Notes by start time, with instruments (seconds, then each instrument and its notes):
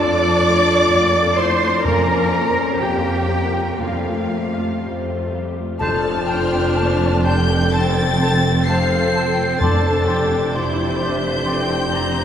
Already playing: double bass section F2, harp F2 A3 A4 D5, viola section A3 F4, french horn section D4, clarinet F4, cello section D5, violin section D6
0.21 viola section D4 A4
0.29 harp A3
0.45 viola section A3 F4
0.68 viola section D4 A4
0.90 double bass section F2, french horn section A#2, viola section A3 F4
1.14 viola section D4 A4
1.22 harp A4
1.37 viola section A3 F4, french horn section A3, clarinet E4, cello section C5, violin section C6
1.62 viola section D4 A4
1.84 harp F2, timpani F2, double bass section F2, french horn section A#3, viola section A#3 F4, clarinet C#4, cello section A#4, violin section A#5
2.08 viola section C#4 A#4
2.17 harp F3
2.31 viola section A#3 F4, french horn section C#4
2.49 harp F4
2.55 viola section C#4 A#4
2.80 double bass section F2, french horn section C3, viola section A#3 F4, clarinet A#3, cello section G4, harp C#5, violin section G5
3.05 viola section C#4 A#4
3.14 harp F4
3.28 french horn section A#3, viola section A#3 F4
3.46 harp C#4
3.54 viola section C#4 A#4
3.77 harp F2, timpani F2, double bass section F2, viola section G3 G4, french horn section A3, clarinet A3, cello section F4, violin section F5
4.05 viola section A3 F4
4.13 harp A3
4.31 viola section G3 G4
4.47 harp G4
4.56 viola section A3 F4
4.81 double bass section F2, viola section G3 G4, harp C5
5.08 viola section A3 F4
5.14 harp A4
5.32 viola section G3 G4
5.48 harp G4
5.57 viola section A3 F4
5.79 double bass section F1, harp F2, timpani F2, cello section F2, french horn section C4 A4, viola section D4 A4, clarinet F4, oboe C5, flute A5, violin section A5 F6
6.12 harp A3
6.28 viola section C5, oboe C5, violin section G5, flute A5
6.45 harp F4
6.77 viola section A#3, harp C5, oboe C5, violin section A5, flute A5
7.09 harp A4
7.25 clarinet G4, viola section A4, oboe C5, violin section G5 G6, flute A5
7.41 harp F4
7.73 harp C3, viola section C4, clarinet A4, oboe C5, flute A5, violin section A6
8.04 harp A3
8.20 viola section C4, oboe C5, flute A5
8.35 harp F4
8.67 viola section A4, harp C5, clarinet C5, oboe C5, violin section F5 C7, flute A5
8.98 harp A4
9.15 oboe C5, violin section G5, flute A5
9.30 harp F4
9.59 double bass section F1, cello section F2, harp F2, timpani F2, french horn section E3 D4, viola section D4 A4, clarinet A4, oboe D5, violin section A5 A6, flute C6
9.92 harp C4
10.07 viola section G4, oboe D5, violin section G5, flute C6
10.23 harp E4
10.54 viola section E4 C5, clarinet G4, harp D5, violin section D5 G6, oboe D5, flute C6
10.84 harp C5
10.99 viola section D4, oboe D5, violin section E5, flute C6
11.14 harp E4
11.45 harp F2, viola section C4, oboe D5, violin section G5, flute C6
11.75 harp C4
11.90 viola section C4, oboe D5, violin section A#5, flute C6
12.07 harp E4